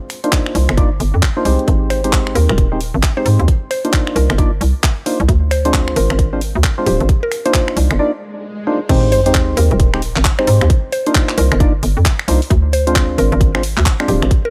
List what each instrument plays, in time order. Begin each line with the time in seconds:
0.10 finger snap, open hi-hat
0.24 synth stab A#3 D4 D#4 F4 C5, closed hi-hat
0.32 kick, clap, closed hi-hat
0.46 finger snap
0.55 fm bass C2, open hi-hat
0.69 fm bass G1, finger snap, closed hi-hat
0.77 synth stab A#3 D4 D#4 F4 D5, kick, closed hi-hat
1.00 fm bass G1, open hi-hat
1.14 fm bass F2
1.23 kick, clap, closed hi-hat
1.37 synth stab A#3 D4 D#4 F4 C5
1.45 fm bass C2, synth stab G#3 C4 D#4 G4 C5, open hi-hat
1.59 closed hi-hat
1.68 fm bass G#1, kick, closed hi-hat
1.90 synth pluck C5, finger snap, open hi-hat
2.04 synth stab G#3 C4 D#4 G4 C5, closed hi-hat
2.13 kick, clap, closed hi-hat
2.27 finger snap
2.35 fm bass D#2, synth pluck A#4, open hi-hat
2.49 fm bass D#1, synth pluck A#4, finger snap, closed hi-hat
2.58 kick, closed hi-hat
2.72 synth stab G#3 C4 D#4 G4 C5
2.81 open hi-hat
2.94 fm bass G#1
3.03 kick, clap, closed hi-hat
3.17 synth stab G#3 C4 D#4 G4 C5, synth pluck C5
3.26 fm bass G#2, open hi-hat
3.39 fm bass D#2, closed hi-hat
3.48 kick, closed hi-hat
3.71 synth pluck C5, finger snap, open hi-hat
3.85 synth stab A#3 D4 D#4 F4 C5, closed hi-hat
3.93 kick, clap, closed hi-hat
4.07 finger snap
4.16 fm bass C2, synth pluck A#4, open hi-hat
4.30 fm bass G1, synth pluck A#4, finger snap, closed hi-hat
4.38 synth stab A#3 D4 D#4 F4 D5, kick, closed hi-hat
4.61 fm bass C2, open hi-hat
4.83 kick, clap, closed hi-hat
5.06 synth stab A#3 D4 D#4 F4 C5, open hi-hat
5.20 fm bass C2, closed hi-hat
5.28 fm bass D2, kick, closed hi-hat
5.51 synth pluck C5, finger snap, open hi-hat
5.65 synth stab G#3 C4 D4 F4 C5, closed hi-hat
5.74 kick, clap, closed hi-hat
5.88 finger snap
5.96 fm bass G#1, synth pluck A#4, open hi-hat
6.10 fm bass G#1, synth pluck A#4, finger snap, closed hi-hat
6.19 kick, closed hi-hat
6.33 synth stab G#3 C4 D4 F4 C5
6.41 open hi-hat
6.55 fm bass D2
6.64 kick, clap, closed hi-hat
6.78 synth stab G#3 C4 D4 F4 C5
6.86 fm bass D1, synth pluck G4, open hi-hat
7.00 fm bass G#1, closed hi-hat
7.09 kick, closed hi-hat
7.23 synth pluck A#4
7.32 finger snap, open hi-hat
7.46 synth stab A#3 D4 D#4 F4 C5, synth pluck C5, closed hi-hat
7.54 kick, clap, closed hi-hat
7.68 finger snap
7.77 fm bass C2, open hi-hat
7.91 fm bass G1, finger snap, closed hi-hat
7.99 synth stab A#3 D4 D#4 F4 D5, swell
8.67 synth stab A#3 D4 D#4 F4 C5
8.89 fm bass G#1, synth stab G#3 C4 D#4 G4 C5, kick, closed hi-hat, crash, sub drop
9.12 synth pluck C5, open hi-hat
9.26 synth stab G#3 C4 D#4 G4 C5, closed hi-hat
9.35 kick, clap, closed hi-hat
9.57 fm bass D#2, synth pluck A#4, open hi-hat
9.71 fm bass D#1, synth pluck A#4, closed hi-hat
9.80 kick, closed hi-hat
9.94 synth stab G#3 C4 D#4 G4 C5, finger snap
10.02 open hi-hat
10.16 fm bass G#1, clap
10.25 kick, clap, closed hi-hat
10.39 synth stab G#3 C4 D#4 G4 C5, synth pluck C5, finger snap
10.47 fm bass G#2, open hi-hat
10.61 fm bass D#2, finger snap, closed hi-hat
10.70 kick, closed hi-hat
10.92 synth pluck C5, open hi-hat
11.06 synth stab A#3 D4 D#4 F4 C5, closed hi-hat
11.15 kick, clap, closed hi-hat
11.29 clap
11.38 fm bass C2, synth pluck A#4, open hi-hat
11.52 fm bass G1, synth pluck A#4, finger snap, closed hi-hat
11.60 synth stab A#3 D4 D#4 F4 D5, kick, closed hi-hat
11.83 fm bass G1, open hi-hat
11.97 fm bass F2
12.05 kick, clap, closed hi-hat
12.19 finger snap
12.28 fm bass C2, synth stab A#3 D4 D#4 F4 C5, open hi-hat
12.42 open hi-hat
12.50 fm bass D2, kick, closed hi-hat
12.73 synth pluck C5, open hi-hat
12.87 synth stab G#3 C4 D4 F4 C5, closed hi-hat
12.96 kick, clap, closed hi-hat
13.18 fm bass G#1, synth pluck A#4, open hi-hat
13.32 fm bass G#1, synth pluck A#4, closed hi-hat
13.41 kick, closed hi-hat
13.55 synth stab G#3 C4 D4 F4 C5, finger snap
13.63 open hi-hat
13.77 fm bass D2, clap
13.86 kick, clap, closed hi-hat
14.00 synth stab G#3 C4 D4 F4 C5, finger snap
14.08 fm bass D1, synth pluck G4, open hi-hat
14.22 fm bass G#1, finger snap, closed hi-hat
14.31 kick, closed hi-hat
14.45 synth pluck A#4